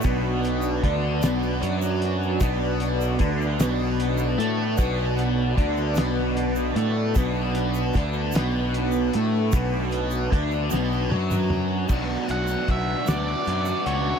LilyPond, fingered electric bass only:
\new Staff \with { instrumentName = "Fingered electric bass" } { \clef bass \time 6/8 \key b \minor \tempo 4. = 51 b,,4 d,8 b,,8 fis,4 | b,,4 d,8 b,,4 a,8 | b,,4 d,8 b,,4 a,8 | b,,4 d,8 b,,4 a,8 |
b,,4 d,8 b,,8 fis,4 | b,,8 b,,8 b,,8 d,8 fis,8 cis,8 | }